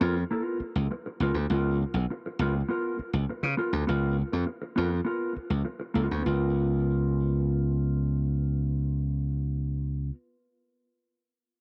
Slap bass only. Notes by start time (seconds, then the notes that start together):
0.01 F2
0.60 muted slap bass stroke
0.76 C#2
1.20 C#2
1.34 D2
1.50 C#2
1.94 B1
2.39 C#2
2.99 muted slap bass stroke
3.13 C#2
3.43 C#3
3.73 D2
3.89 C#2
4.33 F2
4.78 F2
5.36 muted slap bass stroke
5.50 C#2
5.95 C#2
6.11 D2
6.26 C#2